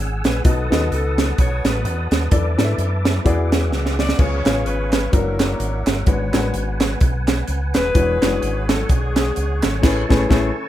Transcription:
Already playing: tonewheel organ G#4 F#5 G#5 E6
0.00 fingered electric bass G#1
0.24 fingered electric bass A#1, saxophone section B4, snare, closed hi-hat
0.44 fingered electric bass B1, upright piano B2 B3 D#4 F#4 A4 D#5, saxophone section D#4 F#4 A4, tonewheel organ B4 A5 D#6, kick, closed hi-hat
0.70 fingered electric bass D#2, upright piano B3 D#4 F#4 A4 D#5, snare, closed hi-hat
0.91 fingered electric bass C#2, saxophone section D#4 F#4 A4, closed hi-hat
1.18 snare, closed hi-hat
1.38 fingered electric bass B1, saxophone section F#4 A4 C#5, kick, closed hi-hat
1.64 fingered electric bass A1, saxophone section D#4 F#4 B4, snare, closed hi-hat
1.85 fingered electric bass E2, closed hi-hat
2.11 fingered electric bass D#2, saxophone section D4 B4, snare, closed hi-hat
2.31 fingered electric bass E2, upright piano E3 B3 D4 E4 A4 D5, tonewheel organ B4 E5 D6, kick, closed hi-hat
2.57 fingered electric bass G#2, upright piano B3 D4 E4 A4 D5, snare, closed hi-hat
2.64 upright piano E5
2.78 fingered electric bass F#2, closed hi-hat
3.05 snare, closed hi-hat
3.24 fingered electric bass E2, upright piano E3 B3 E4 F#4 G#4 D5, tonewheel organ G#4 E5 F#5, kick, closed hi-hat
3.52 snare, closed hi-hat
3.72 fingered electric bass C#2, snare
3.86 snare
3.99 saxophone section D5, snare
4.09 snare
4.18 fingered electric bass C#2, upright piano C#3 B3 C#4 F4 G#4 C#5, saxophone section F4 G#4 C#5, tonewheel organ B4 F5 G#5 C#6, kick, crash
4.45 fingered electric bass A1, upright piano B3 C#4 F4 G#4 C#5, snare, clap, closed hi-hat
4.66 fingered electric bass G#1, saxophone section F4 G#4 B4, closed hi-hat
4.93 snare, clap, closed hi-hat
5.11 fingered electric bass F#1, upright piano G#3 D4 E4 F#4 A#4, saxophone section E4 A#4 C#5, tonewheel organ A#4 E5 F#5, kick, closed hi-hat
5.17 upright piano A#3
5.40 saxophone section A#4 D5, snare, clap, closed hi-hat
5.60 fingered electric bass G#1, closed hi-hat
5.86 fingered electric bass G1, saxophone section F#4 C#5, snare, clap, closed hi-hat
6.06 fingered electric bass G#1, upright piano G#2 G#3 B3 D4 F#4 B4, tonewheel organ B4 G#5, kick, closed hi-hat
6.32 fingered electric bass A1, upright piano G#3 B3 D4 F#4 A#4, snare, clap, closed hi-hat
6.40 upright piano B4
6.54 fingered electric bass G#1, closed hi-hat
6.81 snare, clap, closed hi-hat
7.01 fingered electric bass B1, kick, closed hi-hat
7.28 snare, clap, closed hi-hat
7.48 fingered electric bass C#2, closed hi-hat
7.74 fingered electric bass D#1, saxophone section D4 G#4 B4, snare, clap, closed hi-hat
7.94 fingered electric bass E1, upright piano E3 G#3 D4 E4 F#4 C#5, tonewheel organ C#5, kick, closed hi-hat
8.22 fingered electric bass F#1, upright piano G#3 D4 E4 F#4 C#5, snare, clap, closed hi-hat
8.42 fingered electric bass G#1, closed hi-hat
8.69 saxophone section A4, snare, clap, closed hi-hat
8.89 fingered electric bass B1, saxophone section B3 D4 G#4, kick, closed hi-hat
9.16 snare, clap, closed hi-hat
9.36 fingered electric bass C#2, closed hi-hat
9.62 fingered electric bass G#1, saxophone section C#4 E4 A4, snare, clap, closed hi-hat
9.82 fingered electric bass A1, upright piano A2 A3 C#4 E4 G#4 B4, tonewheel organ B4 A5 C#6, kick, snare, crash
10.09 fingered electric bass A1, upright piano A3 C#4 E4 G#4 B4, kick, snare
10.29 fingered electric bass A1, upright piano A3 C#4 E4 G#4 B4, kick, snare

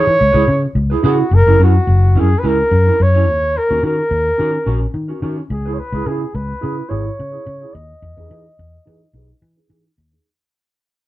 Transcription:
Already playing: clean electric guitar D#4, flugelhorn C#5
0.06 fingered electric bass E3, muted clean electric guitar stroke
0.19 fingered electric bass C#2, muted clean electric guitar stroke
0.32 fingered electric bass C#2, clean electric guitar E4 G#4 B4
0.47 fingered electric bass C#3, muted clean electric guitar stroke
0.62 muted clean electric guitar stroke
0.75 fingered electric bass C#2, muted clean electric guitar stroke
0.90 clean electric guitar E4 G#4 B4
1.03 fingered electric bass C#3, clean electric guitar E4 G#4 B4, flugelhorn F#4
1.18 muted clean electric guitar stroke
1.31 fingered electric bass F#1, flugelhorn A#4, muted clean electric guitar stroke
1.46 fingered electric bass F#1, clean electric guitar C#4 E4 A#4
1.60 fingered electric bass F#2, clean electric guitar C#4 E4 A#4
1.64 flugelhorn F#4
1.76 muted clean electric guitar stroke
1.87 fingered electric bass F#1
2.03 muted clean electric guitar stroke
2.15 fingered electric bass F#2, clean electric guitar C#4 E4 A#4
2.19 flugelhorn G#4
2.31 muted clean electric guitar stroke
2.39 flugelhorn B4
2.43 fingered electric bass C#2, clean electric guitar C#4 E4 A#4, flugelhorn A#4
2.59 muted clean electric guitar stroke
2.71 fingered electric bass F#2, muted clean electric guitar stroke
2.86 clean electric guitar C#4 E4 A#4
2.99 fingered electric bass F#2, flugelhorn C#5, muted clean electric guitar stroke
3.15 clean electric guitar C#4 E4 C#5
3.28 fingered electric bass D#2, muted clean electric guitar stroke
3.42 muted clean electric guitar stroke
3.55 flugelhorn A#4, muted clean electric guitar stroke
3.69 fingered electric bass D#2, clean electric guitar C#4 F#4 A#4
3.82 fingered electric bass D#3, clean electric guitar C#4 F#4 A#4, flugelhorn A#4
4.11 fingered electric bass D#2
4.25 muted clean electric guitar stroke
4.38 fingered electric bass D#3, clean electric guitar C#4 F#4 A#4
4.53 muted clean electric guitar stroke
4.66 fingered electric bass A#1, clean electric guitar C#4 F#4 A#4
4.81 muted clean electric guitar stroke
4.94 fingered electric bass D#3, muted clean electric guitar stroke
5.08 clean electric guitar C#4 F#4 A#4
5.22 fingered electric bass D#3, clean electric guitar C#4 F#4 A#4
5.38 muted clean electric guitar stroke
5.50 fingered electric bass C#2, flugelhorn G#4, muted clean electric guitar stroke
5.65 clean electric guitar E4 G#4 B4
5.73 flugelhorn C#5
5.79 flugelhorn B4
5.92 fingered electric bass C#2, clean electric guitar E4 G#4 B4
6.06 fingered electric bass C#3, clean electric guitar E4 G#4 B4, flugelhorn G#4
6.21 muted clean electric guitar stroke
6.35 fingered electric bass C#2, flugelhorn B4
6.49 muted clean electric guitar stroke
6.61 fingered electric bass C#3, clean electric guitar E4 G#4 B4
6.77 muted clean electric guitar stroke
6.89 fingered electric bass G#1, clean electric guitar E4 G#4 B4, flugelhorn C#5
7.05 muted clean electric guitar stroke
7.17 fingered electric bass C#3, muted clean electric guitar stroke
7.32 clean electric guitar E4 G#4 B4
7.46 fingered electric bass C#3, muted clean electric guitar stroke
7.61 clean electric guitar E4 G#4 C#5
7.74 fingered electric bass D#2, flugelhorn D#5, muted clean electric guitar stroke
7.90 muted clean electric guitar stroke
8.02 fingered electric bass E2, muted clean electric guitar stroke
8.17 fingered electric bass E2, clean electric guitar D#4 G#4 B4
8.29 fingered electric bass E3, clean electric guitar D#4 G#4 B4
8.45 muted clean electric guitar stroke
8.59 fingered electric bass E2
8.73 muted clean electric guitar stroke
8.85 fingered electric bass E3, clean electric guitar D#4 G#4 B4
9.01 muted clean electric guitar stroke
9.13 fingered electric bass B1, clean electric guitar D#4 G#4 B4
9.30 muted clean electric guitar stroke
9.41 fingered electric bass E3, muted clean electric guitar stroke
9.56 clean electric guitar D#4 G#4 B4
9.69 fingered electric bass E3, clean electric guitar D#4 G#4 B4
9.84 muted clean electric guitar stroke
9.98 fingered electric bass D#2
10.11 clean electric guitar D#4 G#4 B4

